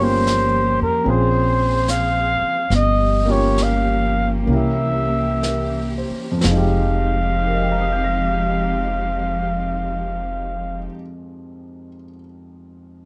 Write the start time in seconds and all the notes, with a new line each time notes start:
Already playing: G1 F3 G3 A#3 G4
0.00 A#3 C#4 F4 G4 C5
0.27 snare, hi-hat pedal
0.81 F2 A#4
1.04 A#1 C4 C#4 F4 G#4 C5, brush sweep
1.08 G#4 C5
1.88 F5, snare, hi-hat pedal
2.42 muted upright bass stroke
2.70 G1 F3 G3 A#3 C#4 G4, brush sweep, snare
2.75 D#5
3.25 A#3 C#4 F4
3.30 G4 C#5
3.58 snare, hi-hat pedal
3.63 F5
4.46 C2 E3 A#3 C#4 G4, brush sweep
4.50 E4 G4 E5
5.42 A#4, snare, hi-hat pedal
5.98 C5
6.11 muted upright bass stroke
6.31 F2
6.38 F3
6.44 F1 F3 G#3 C4 D#4 G4 F5, snare
6.50 D#4
6.57 G4
7.47 A#4
7.55 D#5
7.63 G5
7.72 A#5
7.81 D#6
7.92 G6
8.04 A#6